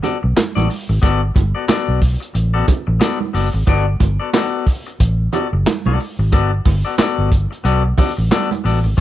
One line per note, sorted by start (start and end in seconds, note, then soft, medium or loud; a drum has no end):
0.03 0.17 B3 medium
0.03 0.17 F#4 medium
0.03 0.17 A4 medium
0.03 0.17 D5 medium
0.03 closed hi-hat medium
0.03 muted conga soft
0.03 low conga medium
0.23 0.34 B1 medium
0.23 muted clean electric guitar stroke soft
0.36 muted clean electric guitar stroke soft
0.36 muted fingered electric bass stroke soft
0.36 snare loud
0.36 clap medium
0.36 closed hi-hat medium
0.36 high conga medium
0.55 0.67 A1 medium
0.55 0.68 B3 medium
0.55 0.68 F#4 medium
0.55 0.68 A4 medium
0.55 0.68 D5 medium
0.55 closed hi-hat medium
0.55 high conga medium
0.69 muted clean electric guitar stroke soft
0.69 open hi-hat medium
0.89 1.00 G#1 loud
0.89 muted clean electric guitar stroke soft
1.02 1.30 G1 medium
1.02 1.20 B3 medium
1.02 1.20 F#4 medium
1.02 1.20 A4 medium
1.02 1.20 D5 loud
1.02 kick loud
1.02 closed hi-hat medium
1.02 muted conga medium
1.35 1.52 G1 medium
1.35 muted clean electric guitar stroke soft
1.35 kick medium
1.35 closed hi-hat medium
1.35 muted conga medium
1.55 1.65 B3 soft
1.55 1.65 F#4 medium
1.55 1.64 A4 medium
1.55 1.64 D5 medium
1.68 1.99 B3 medium
1.68 2.00 F#4 medium
1.68 2.00 A4 medium
1.68 2.00 D5 loud
1.68 muted fingered electric bass stroke soft
1.68 snare loud
1.68 clap loud
1.68 closed hi-hat loud
1.68 high conga medium
1.89 2.15 B1 medium
2.01 muted clean electric guitar stroke soft
2.01 kick medium
2.01 open hi-hat medium
2.20 muted clean electric guitar stroke soft
2.20 closed hi-hat soft
2.34 2.62 A1 medium
2.34 muted clean electric guitar stroke soft
2.34 closed hi-hat medium
2.54 2.66 B3 medium
2.54 2.66 F#4 medium
2.54 2.66 A4 medium
2.54 2.66 D5 medium
2.67 muted clean electric guitar stroke soft
2.67 kick medium
2.67 closed hi-hat medium
2.67 muted conga soft
2.67 low conga medium
2.87 2.99 A1 medium
2.87 muted clean electric guitar stroke medium
3.00 3.18 B3 medium
3.00 3.18 F#4 medium
3.00 3.18 A4 medium
3.00 3.19 D5 medium
3.00 snare loud
3.00 clap medium
3.00 closed hi-hat medium
3.00 high conga medium
3.20 muted clean electric guitar stroke soft
3.20 high conga medium
3.33 3.50 F#1 medium
3.33 3.47 B3 medium
3.33 3.48 F#4 medium
3.33 3.48 A4 medium
3.33 3.48 D5 medium
3.33 open hi-hat medium
3.53 3.65 G#1 medium
3.53 muted clean electric guitar stroke soft
3.67 3.94 G1 medium
3.67 3.85 B3 medium
3.67 3.85 F#4 medium
3.67 3.85 A4 loud
3.67 3.85 D5 loud
3.67 kick loud
3.67 closed hi-hat medium
3.67 muted conga medium
4.00 4.17 G1 medium
4.00 muted clean electric guitar stroke soft
4.00 kick medium
4.00 closed hi-hat medium
4.00 muted conga medium
4.20 4.30 B3 medium
4.20 4.30 F#4 soft
4.20 4.29 A4 medium
4.20 4.29 D5 medium
4.33 4.65 B3 medium
4.33 4.65 F#4 medium
4.33 4.65 A4 medium
4.33 4.65 D5 medium
4.33 snare loud
4.33 clap loud
4.33 closed hi-hat medium
4.33 high conga medium
4.67 muted clean electric guitar stroke soft
4.67 kick medium
4.67 open hi-hat medium
4.87 muted clean electric guitar stroke medium
4.87 closed hi-hat soft
5.00 5.27 A1 medium
5.00 muted clean electric guitar stroke soft
5.00 kick medium
5.00 closed hi-hat medium
5.33 5.46 B3 medium
5.33 5.47 F#4 medium
5.33 5.47 A4 medium
5.33 5.47 D5 medium
5.33 closed hi-hat medium
5.33 low conga medium
5.53 5.64 F#1 medium
5.53 muted clean electric guitar stroke soft
5.66 muted clean electric guitar stroke soft
5.66 snare loud
5.66 clap medium
5.66 closed hi-hat medium
5.66 high conga medium
5.86 5.97 B1 medium
5.86 5.98 B3 medium
5.86 5.99 F#4 medium
5.86 5.99 A4 medium
5.86 6.00 D5 medium
5.86 high conga medium
6.00 open hi-hat medium
6.19 6.33 G#1 loud
6.19 muted clean electric guitar stroke soft
6.32 6.59 G1 loud
6.32 6.50 B3 medium
6.32 6.50 F#4 medium
6.32 6.50 A4 medium
6.32 6.51 D5 medium
6.32 kick loud
6.32 closed hi-hat medium
6.32 muted conga soft
6.65 6.82 G1 medium
6.65 muted clean electric guitar stroke soft
6.65 kick medium
6.65 open hi-hat medium
6.65 muted conga medium
6.85 6.95 B3 medium
6.85 6.95 F#4 soft
6.85 6.94 A4 medium
6.85 6.94 D5 medium
6.98 7.29 B3 medium
6.98 7.30 F#4 loud
6.98 7.30 A4 medium
6.98 7.30 D5 loud
6.98 muted fingered electric bass stroke soft
6.98 snare loud
6.98 clap loud
6.98 closed hi-hat medium
6.98 high conga medium
7.18 7.45 G1 medium
7.31 muted clean electric guitar stroke soft
7.31 kick medium
7.31 closed hi-hat medium
7.51 muted clean electric guitar stroke soft
7.51 closed hi-hat soft
7.64 7.92 B1 medium
7.64 7.82 B3 medium
7.64 7.82 F#4 loud
7.64 7.82 A4 loud
7.64 7.83 D5 loud
7.64 closed hi-hat medium
7.84 muted clean electric guitar stroke soft
7.97 8.11 B3 medium
7.97 8.12 F#4 medium
7.97 8.12 A4 medium
7.97 8.12 D5 medium
7.97 kick medium
7.97 open hi-hat medium
7.97 muted conga soft
7.97 low conga medium
8.17 8.29 A1 medium
8.17 muted clean electric guitar stroke soft
8.31 8.49 B3 medium
8.31 8.49 F#4 medium
8.31 8.49 A4 loud
8.31 8.49 D5 loud
8.31 snare medium
8.31 clap medium
8.31 closed hi-hat medium
8.31 high conga medium
8.51 closed hi-hat medium
8.51 high conga medium
8.64 8.86 A1 medium
8.64 8.78 B3 medium
8.64 8.78 F#4 medium
8.64 8.79 A4 medium
8.64 8.79 D5 medium
8.64 open hi-hat medium
8.84 8.95 G#1 medium
8.84 muted clean electric guitar stroke soft
8.97 9.00 B3 medium